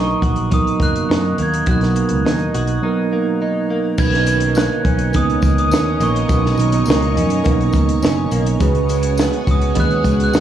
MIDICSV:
0, 0, Header, 1, 7, 480
1, 0, Start_track
1, 0, Tempo, 578035
1, 1387, Time_signature, 4, 2, 24, 8
1, 8637, End_track
2, 0, Start_track
2, 0, Title_t, "Glockenspiel"
2, 0, Program_c, 0, 9
2, 0, Note_on_c, 0, 85, 79
2, 444, Note_off_c, 0, 85, 0
2, 445, Note_on_c, 0, 87, 82
2, 549, Note_off_c, 0, 87, 0
2, 686, Note_on_c, 0, 90, 91
2, 1171, Note_off_c, 0, 90, 0
2, 1184, Note_on_c, 0, 92, 86
2, 1412, Note_off_c, 0, 92, 0
2, 1417, Note_on_c, 0, 90, 80
2, 2330, Note_off_c, 0, 90, 0
2, 3316, Note_on_c, 0, 92, 107
2, 3795, Note_on_c, 0, 90, 100
2, 3807, Note_off_c, 0, 92, 0
2, 4285, Note_on_c, 0, 87, 96
2, 4286, Note_off_c, 0, 90, 0
2, 4635, Note_off_c, 0, 87, 0
2, 4645, Note_on_c, 0, 87, 94
2, 5007, Note_off_c, 0, 87, 0
2, 5008, Note_on_c, 0, 85, 78
2, 6404, Note_off_c, 0, 85, 0
2, 7898, Note_on_c, 0, 87, 78
2, 8128, Note_off_c, 0, 87, 0
2, 8137, Note_on_c, 0, 90, 98
2, 8491, Note_off_c, 0, 90, 0
2, 8500, Note_on_c, 0, 90, 98
2, 8637, Note_off_c, 0, 90, 0
2, 8637, End_track
3, 0, Start_track
3, 0, Title_t, "String machine"
3, 0, Program_c, 1, 50
3, 3303, Note_on_c, 1, 73, 89
3, 3305, Note_on_c, 1, 85, 88
3, 3310, Note_on_c, 1, 82, 74
3, 3311, Note_on_c, 1, 75, 76
3, 7113, Note_off_c, 1, 82, 0
3, 7114, Note_off_c, 1, 75, 0
3, 7143, Note_on_c, 1, 78, 76
3, 7145, Note_on_c, 1, 80, 77
3, 8637, Note_off_c, 1, 73, 0
3, 8637, Note_off_c, 1, 78, 0
3, 8637, Note_off_c, 1, 80, 0
3, 8637, Note_off_c, 1, 85, 0
3, 8637, End_track
4, 0, Start_track
4, 0, Title_t, "Tine electric piano"
4, 0, Program_c, 2, 4
4, 0, Control_c, 2, 64, 127
4, 0, Note_on_c, 2, 54, 88
4, 0, Note_on_c, 2, 59, 86
4, 0, Note_on_c, 2, 63, 78
4, 0, Note_on_c, 2, 70, 90
4, 419, Note_off_c, 2, 54, 0
4, 419, Note_on_c, 2, 54, 70
4, 430, Note_off_c, 2, 59, 0
4, 430, Note_on_c, 2, 59, 60
4, 433, Note_off_c, 2, 63, 0
4, 433, Note_on_c, 2, 63, 64
4, 443, Note_off_c, 2, 70, 0
4, 443, Note_on_c, 2, 70, 76
4, 1077, Note_off_c, 2, 54, 0
4, 1082, Note_off_c, 2, 59, 0
4, 1084, Note_off_c, 2, 63, 0
4, 1089, Note_off_c, 2, 70, 0
4, 1390, Note_on_c, 2, 54, 65
4, 1399, Note_on_c, 2, 59, 61
4, 1404, Note_on_c, 2, 63, 62
4, 1411, Note_on_c, 2, 70, 70
4, 2043, Note_off_c, 2, 54, 0
4, 2047, Note_off_c, 2, 59, 0
4, 2050, Note_off_c, 2, 63, 0
4, 2054, Note_off_c, 2, 70, 0
4, 2343, Note_on_c, 2, 54, 77
4, 2348, Note_on_c, 2, 59, 75
4, 2361, Note_on_c, 2, 63, 65
4, 2365, Note_on_c, 2, 70, 87
4, 3000, Note_off_c, 2, 54, 0
4, 3002, Note_off_c, 2, 59, 0
4, 3009, Note_off_c, 2, 63, 0
4, 3011, Note_off_c, 2, 70, 0
4, 3305, Note_on_c, 2, 70, 75
4, 3312, Note_on_c, 2, 61, 59
4, 3318, Note_on_c, 2, 63, 62
4, 3320, Control_c, 2, 64, 0
4, 3322, Note_on_c, 2, 71, 76
4, 3464, Control_c, 2, 64, 127
4, 3961, Note_off_c, 2, 70, 0
4, 3964, Note_off_c, 2, 61, 0
4, 3967, Note_off_c, 2, 63, 0
4, 3969, Note_off_c, 2, 71, 0
4, 4257, Note_on_c, 2, 70, 66
4, 4270, Note_on_c, 2, 61, 63
4, 4270, Note_on_c, 2, 63, 68
4, 4282, Note_on_c, 2, 59, 82
4, 4916, Note_off_c, 2, 70, 0
4, 4922, Note_off_c, 2, 61, 0
4, 4923, Note_off_c, 2, 63, 0
4, 4928, Note_off_c, 2, 59, 0
4, 5222, Note_on_c, 2, 70, 72
4, 5232, Note_on_c, 2, 61, 69
4, 5239, Note_on_c, 2, 63, 65
4, 5246, Note_on_c, 2, 59, 85
4, 5878, Note_off_c, 2, 70, 0
4, 5883, Note_off_c, 2, 61, 0
4, 5887, Note_off_c, 2, 63, 0
4, 5890, Note_off_c, 2, 59, 0
4, 6176, Note_on_c, 2, 70, 80
4, 6187, Note_on_c, 2, 61, 73
4, 6192, Note_on_c, 2, 63, 84
4, 6196, Note_on_c, 2, 59, 94
4, 6834, Note_off_c, 2, 70, 0
4, 6840, Note_off_c, 2, 61, 0
4, 6842, Note_off_c, 2, 63, 0
4, 6845, Note_off_c, 2, 59, 0
4, 7138, Note_on_c, 2, 56, 78
4, 7146, Note_on_c, 2, 61, 73
4, 7155, Control_c, 2, 64, 0
4, 7155, Note_on_c, 2, 66, 76
4, 7157, Note_on_c, 2, 71, 92
4, 7324, Control_c, 2, 64, 127
4, 7795, Note_off_c, 2, 56, 0
4, 7799, Note_off_c, 2, 61, 0
4, 7803, Note_off_c, 2, 66, 0
4, 7805, Note_off_c, 2, 71, 0
4, 8090, Note_on_c, 2, 56, 79
4, 8099, Note_on_c, 2, 61, 67
4, 8102, Note_on_c, 2, 66, 70
4, 8115, Note_on_c, 2, 71, 88
4, 8637, Note_off_c, 2, 56, 0
4, 8637, Note_off_c, 2, 61, 0
4, 8637, Note_off_c, 2, 66, 0
4, 8637, Note_off_c, 2, 71, 0
4, 8637, End_track
5, 0, Start_track
5, 0, Title_t, "Clean electric guitar"
5, 0, Program_c, 3, 27
5, 0, Note_on_c, 3, 47, 75
5, 0, Note_on_c, 3, 51, 72
5, 0, Note_on_c, 3, 58, 49
5, 0, Note_on_c, 3, 63, 58
5, 0, Note_on_c, 3, 66, 66
5, 182, Note_off_c, 3, 66, 0
5, 185, Note_on_c, 3, 66, 66
5, 420, Note_off_c, 3, 63, 0
5, 423, Note_on_c, 3, 63, 58
5, 435, Note_off_c, 3, 51, 0
5, 659, Note_off_c, 3, 58, 0
5, 663, Note_on_c, 3, 58, 56
5, 901, Note_off_c, 3, 63, 0
5, 905, Note_on_c, 3, 63, 53
5, 1149, Note_off_c, 3, 58, 0
5, 1152, Note_on_c, 3, 58, 55
5, 1383, Note_off_c, 3, 47, 0
5, 1393, Note_on_c, 3, 47, 73
5, 1394, Note_off_c, 3, 66, 0
5, 1397, Note_on_c, 3, 66, 58
5, 1628, Note_off_c, 3, 58, 0
5, 1631, Note_on_c, 3, 58, 48
5, 1868, Note_off_c, 3, 63, 0
5, 1872, Note_on_c, 3, 63, 58
5, 2110, Note_off_c, 3, 66, 0
5, 2113, Note_on_c, 3, 66, 57
5, 2349, Note_off_c, 3, 63, 0
5, 2352, Note_on_c, 3, 63, 56
5, 2592, Note_off_c, 3, 58, 0
5, 2595, Note_on_c, 3, 58, 54
5, 2834, Note_off_c, 3, 63, 0
5, 2837, Note_on_c, 3, 63, 58
5, 3072, Note_off_c, 3, 58, 0
5, 3075, Note_on_c, 3, 58, 56
5, 3303, Note_off_c, 3, 47, 0
5, 3313, Note_on_c, 3, 47, 79
5, 3551, Note_on_c, 3, 51, 55
5, 3786, Note_off_c, 3, 58, 0
5, 3789, Note_on_c, 3, 58, 63
5, 4029, Note_off_c, 3, 63, 0
5, 4033, Note_on_c, 3, 61, 69
5, 4261, Note_off_c, 3, 58, 0
5, 4271, Note_on_c, 3, 58, 62
5, 4504, Note_off_c, 3, 51, 0
5, 4514, Note_on_c, 3, 51, 58
5, 4746, Note_off_c, 3, 61, 0
5, 4749, Note_on_c, 3, 61, 68
5, 4975, Note_off_c, 3, 58, 0
5, 4984, Note_on_c, 3, 58, 66
5, 5020, Note_off_c, 3, 66, 0
5, 5210, Note_off_c, 3, 47, 0
5, 5220, Note_on_c, 3, 47, 81
5, 5461, Note_off_c, 3, 51, 0
5, 5471, Note_on_c, 3, 51, 56
5, 5703, Note_off_c, 3, 58, 0
5, 5713, Note_on_c, 3, 58, 64
5, 5941, Note_off_c, 3, 61, 0
5, 5944, Note_on_c, 3, 61, 67
5, 6171, Note_off_c, 3, 58, 0
5, 6181, Note_on_c, 3, 58, 67
5, 6416, Note_off_c, 3, 51, 0
5, 6426, Note_on_c, 3, 51, 62
5, 6663, Note_off_c, 3, 61, 0
5, 6666, Note_on_c, 3, 61, 72
5, 6897, Note_off_c, 3, 58, 0
5, 6907, Note_on_c, 3, 58, 58
5, 7141, Note_off_c, 3, 47, 0
5, 7145, Note_on_c, 3, 49, 88
5, 7194, Note_off_c, 3, 51, 0
5, 7194, Note_off_c, 3, 58, 0
5, 7389, Note_on_c, 3, 56, 53
5, 7631, Note_on_c, 3, 59, 65
5, 7656, Note_off_c, 3, 61, 0
5, 7865, Note_on_c, 3, 66, 69
5, 8095, Note_off_c, 3, 59, 0
5, 8099, Note_on_c, 3, 59, 66
5, 8335, Note_off_c, 3, 56, 0
5, 8345, Note_on_c, 3, 56, 62
5, 8578, Note_off_c, 3, 66, 0
5, 8581, Note_on_c, 3, 66, 71
5, 8637, Note_off_c, 3, 49, 0
5, 8637, Note_off_c, 3, 56, 0
5, 8637, Note_off_c, 3, 59, 0
5, 8637, Note_off_c, 3, 66, 0
5, 8637, End_track
6, 0, Start_track
6, 0, Title_t, "Picked electric bass"
6, 0, Program_c, 4, 34
6, 0, Note_on_c, 4, 35, 73
6, 112, Note_off_c, 4, 35, 0
6, 185, Note_on_c, 4, 34, 78
6, 569, Note_off_c, 4, 34, 0
6, 665, Note_on_c, 4, 30, 74
6, 857, Note_off_c, 4, 30, 0
6, 915, Note_on_c, 4, 42, 81
6, 1103, Note_off_c, 4, 42, 0
6, 1149, Note_on_c, 4, 39, 78
6, 1340, Note_off_c, 4, 39, 0
6, 1385, Note_on_c, 4, 35, 83
6, 1674, Note_off_c, 4, 35, 0
6, 1755, Note_on_c, 4, 37, 75
6, 1848, Note_off_c, 4, 37, 0
6, 1882, Note_on_c, 4, 39, 71
6, 2068, Note_off_c, 4, 39, 0
6, 2114, Note_on_c, 4, 35, 81
6, 2304, Note_off_c, 4, 35, 0
6, 3310, Note_on_c, 4, 35, 97
6, 3879, Note_off_c, 4, 35, 0
6, 4027, Note_on_c, 4, 35, 88
6, 4275, Note_off_c, 4, 35, 0
6, 4275, Note_on_c, 4, 37, 96
6, 4464, Note_off_c, 4, 37, 0
6, 4507, Note_on_c, 4, 37, 82
6, 4748, Note_off_c, 4, 37, 0
6, 4748, Note_on_c, 4, 39, 87
6, 4940, Note_off_c, 4, 39, 0
6, 4985, Note_on_c, 4, 34, 93
6, 5178, Note_off_c, 4, 34, 0
6, 5225, Note_on_c, 4, 35, 101
6, 5418, Note_off_c, 4, 35, 0
6, 5462, Note_on_c, 4, 35, 107
6, 5656, Note_off_c, 4, 35, 0
6, 5703, Note_on_c, 4, 37, 88
6, 5946, Note_on_c, 4, 42, 94
6, 5958, Note_off_c, 4, 37, 0
6, 6138, Note_off_c, 4, 42, 0
6, 6194, Note_on_c, 4, 35, 96
6, 6383, Note_off_c, 4, 35, 0
6, 6424, Note_on_c, 4, 37, 72
6, 6617, Note_off_c, 4, 37, 0
6, 6664, Note_on_c, 4, 30, 94
6, 6857, Note_off_c, 4, 30, 0
6, 6908, Note_on_c, 4, 35, 89
6, 7099, Note_off_c, 4, 35, 0
6, 7146, Note_on_c, 4, 37, 105
6, 7715, Note_off_c, 4, 37, 0
6, 7869, Note_on_c, 4, 37, 104
6, 8059, Note_off_c, 4, 37, 0
6, 8109, Note_on_c, 4, 39, 89
6, 8300, Note_off_c, 4, 39, 0
6, 8338, Note_on_c, 4, 37, 87
6, 8533, Note_off_c, 4, 37, 0
6, 8588, Note_on_c, 4, 39, 91
6, 8637, Note_off_c, 4, 39, 0
6, 8637, End_track
7, 0, Start_track
7, 0, Title_t, "Drums"
7, 184, Note_on_c, 9, 36, 83
7, 191, Note_on_c, 9, 42, 74
7, 267, Note_off_c, 9, 36, 0
7, 274, Note_off_c, 9, 42, 0
7, 298, Note_on_c, 9, 42, 47
7, 381, Note_off_c, 9, 42, 0
7, 428, Note_on_c, 9, 42, 86
7, 433, Note_on_c, 9, 36, 86
7, 511, Note_off_c, 9, 42, 0
7, 516, Note_off_c, 9, 36, 0
7, 558, Note_on_c, 9, 42, 34
7, 641, Note_off_c, 9, 42, 0
7, 663, Note_on_c, 9, 36, 85
7, 674, Note_on_c, 9, 42, 68
7, 746, Note_off_c, 9, 36, 0
7, 757, Note_off_c, 9, 42, 0
7, 794, Note_on_c, 9, 42, 49
7, 877, Note_off_c, 9, 42, 0
7, 924, Note_on_c, 9, 38, 111
7, 1007, Note_off_c, 9, 38, 0
7, 1147, Note_on_c, 9, 42, 65
7, 1230, Note_off_c, 9, 42, 0
7, 1275, Note_on_c, 9, 42, 52
7, 1358, Note_off_c, 9, 42, 0
7, 1381, Note_on_c, 9, 42, 82
7, 1387, Note_on_c, 9, 36, 96
7, 1464, Note_off_c, 9, 42, 0
7, 1470, Note_off_c, 9, 36, 0
7, 1504, Note_on_c, 9, 42, 32
7, 1517, Note_on_c, 9, 38, 35
7, 1587, Note_off_c, 9, 42, 0
7, 1600, Note_off_c, 9, 38, 0
7, 1626, Note_on_c, 9, 42, 69
7, 1709, Note_off_c, 9, 42, 0
7, 1734, Note_on_c, 9, 42, 57
7, 1817, Note_off_c, 9, 42, 0
7, 1880, Note_on_c, 9, 38, 93
7, 1963, Note_off_c, 9, 38, 0
7, 1984, Note_on_c, 9, 42, 30
7, 2068, Note_off_c, 9, 42, 0
7, 2113, Note_on_c, 9, 42, 74
7, 2196, Note_off_c, 9, 42, 0
7, 2220, Note_on_c, 9, 42, 45
7, 2303, Note_off_c, 9, 42, 0
7, 3303, Note_on_c, 9, 54, 49
7, 3305, Note_on_c, 9, 49, 90
7, 3308, Note_on_c, 9, 36, 105
7, 3386, Note_off_c, 9, 54, 0
7, 3388, Note_off_c, 9, 49, 0
7, 3391, Note_off_c, 9, 36, 0
7, 3423, Note_on_c, 9, 42, 35
7, 3436, Note_on_c, 9, 38, 39
7, 3506, Note_off_c, 9, 42, 0
7, 3519, Note_off_c, 9, 38, 0
7, 3541, Note_on_c, 9, 54, 46
7, 3544, Note_on_c, 9, 42, 69
7, 3624, Note_off_c, 9, 54, 0
7, 3627, Note_off_c, 9, 42, 0
7, 3657, Note_on_c, 9, 42, 61
7, 3740, Note_off_c, 9, 42, 0
7, 3779, Note_on_c, 9, 54, 76
7, 3800, Note_on_c, 9, 38, 103
7, 3862, Note_off_c, 9, 54, 0
7, 3883, Note_off_c, 9, 38, 0
7, 4026, Note_on_c, 9, 36, 96
7, 4030, Note_on_c, 9, 42, 86
7, 4109, Note_off_c, 9, 36, 0
7, 4113, Note_off_c, 9, 42, 0
7, 4140, Note_on_c, 9, 42, 52
7, 4223, Note_off_c, 9, 42, 0
7, 4259, Note_on_c, 9, 54, 31
7, 4270, Note_on_c, 9, 42, 94
7, 4274, Note_on_c, 9, 36, 97
7, 4342, Note_off_c, 9, 54, 0
7, 4353, Note_off_c, 9, 42, 0
7, 4357, Note_off_c, 9, 36, 0
7, 4399, Note_on_c, 9, 42, 35
7, 4482, Note_off_c, 9, 42, 0
7, 4501, Note_on_c, 9, 54, 46
7, 4506, Note_on_c, 9, 36, 96
7, 4522, Note_on_c, 9, 42, 70
7, 4584, Note_off_c, 9, 54, 0
7, 4589, Note_off_c, 9, 36, 0
7, 4605, Note_off_c, 9, 42, 0
7, 4636, Note_on_c, 9, 42, 58
7, 4719, Note_off_c, 9, 42, 0
7, 4745, Note_on_c, 9, 54, 73
7, 4763, Note_on_c, 9, 38, 113
7, 4828, Note_off_c, 9, 54, 0
7, 4846, Note_off_c, 9, 38, 0
7, 4985, Note_on_c, 9, 54, 47
7, 4987, Note_on_c, 9, 42, 70
7, 5068, Note_off_c, 9, 54, 0
7, 5070, Note_off_c, 9, 42, 0
7, 5115, Note_on_c, 9, 42, 54
7, 5198, Note_off_c, 9, 42, 0
7, 5225, Note_on_c, 9, 42, 93
7, 5225, Note_on_c, 9, 54, 50
7, 5226, Note_on_c, 9, 36, 101
7, 5308, Note_off_c, 9, 42, 0
7, 5308, Note_off_c, 9, 54, 0
7, 5309, Note_off_c, 9, 36, 0
7, 5363, Note_on_c, 9, 38, 43
7, 5446, Note_off_c, 9, 38, 0
7, 5459, Note_on_c, 9, 54, 45
7, 5476, Note_on_c, 9, 42, 67
7, 5542, Note_off_c, 9, 54, 0
7, 5559, Note_off_c, 9, 42, 0
7, 5583, Note_on_c, 9, 42, 66
7, 5666, Note_off_c, 9, 42, 0
7, 5692, Note_on_c, 9, 54, 77
7, 5731, Note_on_c, 9, 38, 111
7, 5775, Note_off_c, 9, 54, 0
7, 5814, Note_off_c, 9, 38, 0
7, 5831, Note_on_c, 9, 42, 37
7, 5914, Note_off_c, 9, 42, 0
7, 5955, Note_on_c, 9, 42, 76
7, 6038, Note_off_c, 9, 42, 0
7, 6063, Note_on_c, 9, 42, 55
7, 6146, Note_off_c, 9, 42, 0
7, 6180, Note_on_c, 9, 54, 30
7, 6191, Note_on_c, 9, 42, 90
7, 6194, Note_on_c, 9, 36, 105
7, 6263, Note_off_c, 9, 54, 0
7, 6274, Note_off_c, 9, 42, 0
7, 6277, Note_off_c, 9, 36, 0
7, 6316, Note_on_c, 9, 42, 37
7, 6399, Note_off_c, 9, 42, 0
7, 6415, Note_on_c, 9, 54, 50
7, 6424, Note_on_c, 9, 36, 91
7, 6434, Note_on_c, 9, 42, 71
7, 6498, Note_off_c, 9, 54, 0
7, 6507, Note_off_c, 9, 36, 0
7, 6517, Note_off_c, 9, 42, 0
7, 6550, Note_on_c, 9, 42, 57
7, 6633, Note_off_c, 9, 42, 0
7, 6664, Note_on_c, 9, 54, 72
7, 6681, Note_on_c, 9, 38, 113
7, 6747, Note_off_c, 9, 54, 0
7, 6764, Note_off_c, 9, 38, 0
7, 6904, Note_on_c, 9, 54, 48
7, 6907, Note_on_c, 9, 42, 74
7, 6987, Note_off_c, 9, 54, 0
7, 6990, Note_off_c, 9, 42, 0
7, 7028, Note_on_c, 9, 42, 57
7, 7111, Note_off_c, 9, 42, 0
7, 7145, Note_on_c, 9, 42, 91
7, 7146, Note_on_c, 9, 36, 104
7, 7147, Note_on_c, 9, 54, 47
7, 7228, Note_off_c, 9, 42, 0
7, 7229, Note_off_c, 9, 36, 0
7, 7230, Note_off_c, 9, 54, 0
7, 7265, Note_on_c, 9, 42, 40
7, 7348, Note_off_c, 9, 42, 0
7, 7383, Note_on_c, 9, 54, 48
7, 7386, Note_on_c, 9, 42, 75
7, 7466, Note_off_c, 9, 54, 0
7, 7469, Note_off_c, 9, 42, 0
7, 7496, Note_on_c, 9, 42, 65
7, 7579, Note_off_c, 9, 42, 0
7, 7619, Note_on_c, 9, 54, 79
7, 7636, Note_on_c, 9, 38, 100
7, 7702, Note_off_c, 9, 54, 0
7, 7719, Note_off_c, 9, 38, 0
7, 7746, Note_on_c, 9, 42, 37
7, 7829, Note_off_c, 9, 42, 0
7, 7866, Note_on_c, 9, 36, 99
7, 7869, Note_on_c, 9, 54, 32
7, 7872, Note_on_c, 9, 42, 87
7, 7949, Note_off_c, 9, 36, 0
7, 7952, Note_off_c, 9, 54, 0
7, 7955, Note_off_c, 9, 42, 0
7, 7984, Note_on_c, 9, 42, 51
7, 8067, Note_off_c, 9, 42, 0
7, 8099, Note_on_c, 9, 42, 91
7, 8111, Note_on_c, 9, 36, 91
7, 8182, Note_off_c, 9, 42, 0
7, 8194, Note_off_c, 9, 36, 0
7, 8226, Note_on_c, 9, 42, 32
7, 8309, Note_off_c, 9, 42, 0
7, 8341, Note_on_c, 9, 36, 86
7, 8343, Note_on_c, 9, 54, 50
7, 8347, Note_on_c, 9, 42, 77
7, 8424, Note_off_c, 9, 36, 0
7, 8426, Note_off_c, 9, 54, 0
7, 8430, Note_off_c, 9, 42, 0
7, 8470, Note_on_c, 9, 42, 54
7, 8553, Note_off_c, 9, 42, 0
7, 8582, Note_on_c, 9, 54, 72
7, 8594, Note_on_c, 9, 38, 107
7, 8637, Note_off_c, 9, 38, 0
7, 8637, Note_off_c, 9, 54, 0
7, 8637, End_track
0, 0, End_of_file